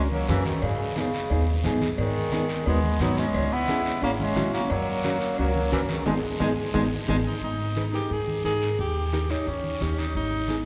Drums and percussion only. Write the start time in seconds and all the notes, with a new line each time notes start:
0.12 high conga
0.28 cowbell, high conga, low timbale, short guiro
0.45 high conga, short guiro
0.62 cowbell, high conga, long guiro
0.79 high conga
0.96 cowbell, high conga, short guiro
1.14 short guiro
1.30 cowbell, long guiro
1.64 cowbell, high conga, low conga, low timbale, short guiro
1.81 high conga, short guiro
1.98 cowbell, high conga, long guiro
2.15 high conga
2.32 cowbell, high conga, short guiro
2.49 short guiro
2.66 cowbell, long guiro
2.84 high conga
3.00 cowbell, high conga, low timbale, short guiro
3.17 high conga, short guiro
3.34 cowbell, high conga, long guiro
3.51 high conga
3.68 cowbell, high conga, short guiro
3.85 short guiro
4.02 cowbell, long guiro
4.19 high conga
4.36 cowbell, high conga, low conga, low timbale, short guiro
4.54 short guiro
4.70 cowbell, high conga, long guiro
4.88 high conga
5.04 cowbell, high conga, short guiro
5.21 short guiro
5.38 cowbell, long guiro
5.55 high conga
5.72 cowbell, high conga, short guiro
5.89 high conga, short guiro
6.06 high conga, high timbale, long guiro
6.40 high conga, high timbale, long guiro
6.74 high conga, high timbale, long guiro
7.08 high conga, high timbale, long guiro
7.42 high conga, long guiro
7.60 high conga
7.76 high conga, short guiro
7.94 short guiro
8.10 long guiro
8.28 high conga
8.44 high conga, short guiro
8.62 short guiro
8.78 high conga, long guiro
8.95 high conga
9.13 high conga, short guiro
9.30 short guiro
9.47 long guiro
9.64 high conga
9.81 high conga, short guiro
9.98 short guiro
10.15 high conga, long guiro
10.31 high conga
10.48 high conga, short guiro